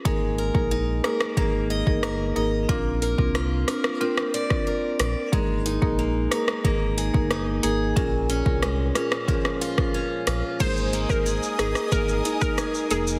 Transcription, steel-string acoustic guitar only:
X:1
M:4/4
L:1/8
Q:1/4=91
K:Ab
V:1 name="Steel-string acoustic guitar"
A, B E B B, e B e | B, B F B C =d B d | A, E B, E B, A E A | B,, D A, D F, F D F |
A, B, A E B, E A B, |]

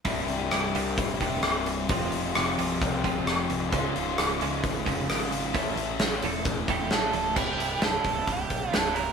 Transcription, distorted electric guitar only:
X:1
M:4/4
L:1/8
Q:1/4=131
K:F
V:1 name="Distorted electric guitar" clef=bass
[C,,G,,C,G,E]8 | [F,,C,F,_A,CF]8 | [_D,,_A,,_D,F,F]8 | [A,,E,A,^CEA]8 |
z8 |]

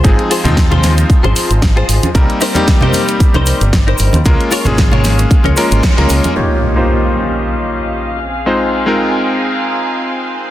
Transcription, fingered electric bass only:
X:1
M:4/4
L:1/16
Q:"Swing 16ths" 1/4=114
K:Ab
V:1 name="Fingered electric bass" clef=bass
A,,, z2 E,,4 z2 A,,, z A,,,2 z A,,, z | C,, z8 C,, z G,,,2 z G,,, E,, | D,, z2 A,,,4 z2 D,, z A,,, z D,, D,, z | z16 |
z16 |]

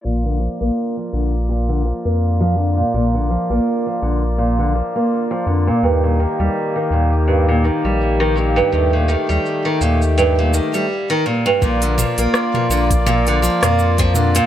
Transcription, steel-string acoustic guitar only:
X:1
M:4/4
L:1/16
Q:"Swing 16ths" 1/4=83
K:Bb
V:1 name="Steel-string acoustic guitar" clef=bass
B,, D, F, B,2 F, D, z B,, D, F, B,2 F, D, B,, | B,, D, F, B,2 F, D, z B,, D, F, B,2 F, D, B,, | G,, B,, E, G,2 E, B,, z G,, B,, E, G,2 E, B,, G,, | G,, B,, E, G,2 E, B,, z G,, B,, E, G,2 E, B,, G,, |
B,, D, F, B,2 F, D, z B,, D, F, B,2 F, D, B,, |]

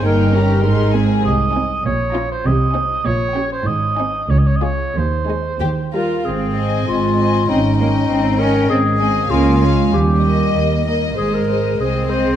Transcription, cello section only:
X:1
M:2/4
L:1/8
Q:1/4=98
K:Ab
V:1 name="Cello section" clef=bass
G,,2 A,,2 | C,2 B,,2 | C,2 B,,2 | A,,2 D,,2 |
E,,2 E,,2 | C2 A,2 | C B, C D | C A, B, A, |
G,3 z | z2 C2 |]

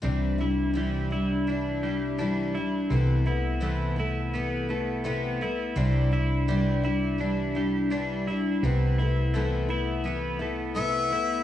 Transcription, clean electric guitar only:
X:1
M:4/4
L:1/8
Q:1/4=84
K:C
V:1 name="Clean electric guitar"
C, E G, E D G, D E | C, E A, E B, A, B, E | C, E G, E D G, D E | C, E A, E B, A, B, E |]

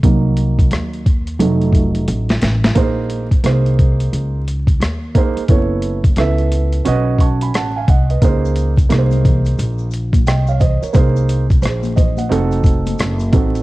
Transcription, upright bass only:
X:1
M:4/4
L:1/16
Q:"Swing 16ths" 1/4=88
K:Dblyd
V:1 name="Upright bass" clef=bass
C,,4 E,,4 F,,,4 =A,,,2 A,,,2 | B,,,4 C,,4 D,,4 E,,3 z | _G,,,4 D,,4 =B,,,4 =A,,,2 C,,2 | D,,4 C,,4 B,,,4 C,,3 z |
C,,4 B,,,4 F,,,4 _G,,,2 =A,,,2 |]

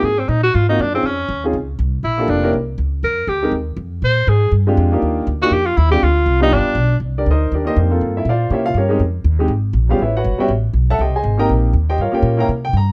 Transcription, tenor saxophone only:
X:1
M:4/4
L:1/16
Q:"Swing" 1/4=241
K:Eb
V:1 name="Tenor saxophone"
A2 C2 E2 _G2 F2 E2 D2 C2 | _D6 z8 z2 | _F4 D4 z8 | B4 G4 z8 |
c4 A4 z8 | z6 _G2 =G2 F2 _F2 G2 | F6 E2 D6- D z | [K:Cm] z16 |
z16 | z16 | z16 | z16 |
z16 |]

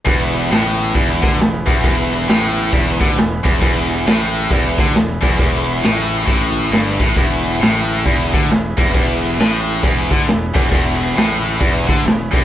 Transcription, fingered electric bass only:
X:1
M:4/4
L:1/8
Q:"Swing" 1/4=135
K:Emix
V:1 name="Fingered electric bass" clef=bass
E,,,2 A,,,2 E,,, D,, E,,, E,,, | E,,,2 A,,,2 E,,, D,, E,,, E,,, | E,,,2 A,,,2 E,,, D,, E,,, E,,, | E,,,2 A,,,2 A,,,2 =G,,, A,,, |
E,,,2 A,,,2 E,,, D,, E,,, E,,, | E,,,2 A,,,2 E,,, D,, E,,, E,,, | E,,,2 A,,,2 E,,, D,, E,,, E,,, |]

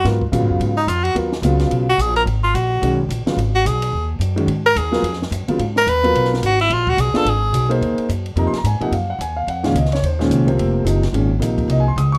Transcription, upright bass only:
X:1
M:4/4
L:1/8
Q:"Swing" 1/4=216
K:G#dor
V:1 name="Upright bass" clef=bass
G,,2 (3A,, G,, F,, G,,2 E,,2 | D,,2 C,,2 B,,,2 A,,,2 | G,,,2 A,,,2 B,,,2 A,,, z | G,,,2 B,,,2 D,,2 F,,2 |
G,,2 D,,2 E,,2 F,, z | G,,2 D,,2 B,,,2 G,,,2 | A,,,2 B,,, z G,,,2 B,,,2 | [K:Ebdor] E,, z G,,2 F,, z A,, z |
G,,2 E,,2 F,,2 D,,2 | E,,2 C,,2 F,,,2 G,,,2 | A,,,2 B,,,2 C,,2 D,,2 |]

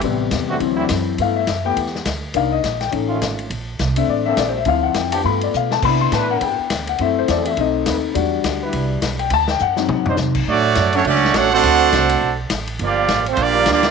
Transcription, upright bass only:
X:1
M:4/4
L:1/8
Q:"Swing" 1/4=207
K:D
V:1 name="Upright bass" clef=bass
A,,,2 E,,2 D,,2 F,,2 | [K:G] G,,2 F,,2 E,,2 D,,2 | C,,2 _B,,,2 A,,,2 ^G,,,2 | _B,,,2 C,,2 A,,,2 B,,,2 |
D,,2 =F,,2 G,,2 B,,2 | C,2 A,,2 G,, z D,,2 | F,,2 E,,2 B,,,2 ^D,,2 | E,,2 D,,2 C,,2 B,,,2 |
D,,2 F,,2 A,,2 C,2 | [K:Glyd] A,,2 F,,2 C,,2 A,,,2 | D,,2 =C,,2 B,,,2 A,,,2 | G,,,2 A,,,2 _B,,,2 D,,2 |]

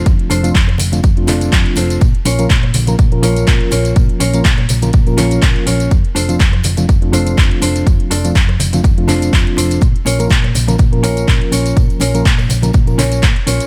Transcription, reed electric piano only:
X:1
M:4/4
L:1/16
Q:"Swing 16ths" 1/4=123
K:Bblyd
V:1 name="Reed electric piano"
[F,A,CDF]3 [F,A,CDF] z3 [F,A,CDF] z [F,A,CDF] [F,A,CDF]6 | z3 [F,B,_DFB] z3 [F,B,DFB] z [F,B,DFB] [F,B,DFB]6- | [F,B,_DFB]3 [F,B,DFB] z3 [F,B,DFB] z [F,B,DFB] [F,B,DFB]6 | z3 [F,A,CDF] z3 [F,A,CDF] z [F,A,CDF] [F,A,CDF]6- |
[F,A,CDF]3 [F,A,CDF] z3 [F,A,CDF] z [F,A,CDF] [F,A,CDF]6 | z3 [F,B,_DFB] z3 [F,B,DFB] z [F,B,DFB] [F,B,DFB]6- | [F,B,_DFB]3 [F,B,DFB] z3 [F,B,DFB] z [F,B,DFB] z6 |]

